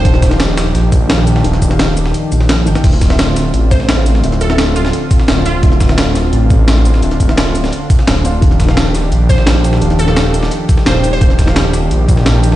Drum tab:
CC |----------------|----------------|x---------------|----------------|
HH |x-x-x-x-x-x-x-x-|xxx-x-x-x-x-x-x-|x-x-x-x-x-x-x-x-|xxx-x-x-x-x-x-x-|
SH |--x---x---x---x-|--x---x-x-x---xx|--x---x---x---x-|--x---x---x---x-|
SD |-oooo-o-o---o--o|-o-oo--o---oo--o|-oooo-o----oo--o|-o-oo--o---oo---|
BD |o-o-------o-----|--o-------------|o-o-------o-----|----------o-----|

CC |----------------|----------------|----------------|----------------|
HH |x-x-x-x-x-x-x-x-|xxx-x-x-x-x-x-x-|x-x-x-x-x-x-x-x-|xxx-x-x-x-x-x-x-|
SH |--x---x---x---x-|--x---xx--x---x-|--x---x---x---x-|--x---x---x---x-|
SD |-oooo-o-----o--o|-o-oo--o---oo---|-oooo-o----oo--o|-o-oo--o---oo---|
BD |o-o-------o-----|--o-------o-----|o-o-------o-----|----------o-----|

CC |----------------|
HH |x-x-x-x-x-x-x-x-|
SH |--x---x---x---x-|
SD |-oooo-o----oo--o|
BD |o-o-------o-----|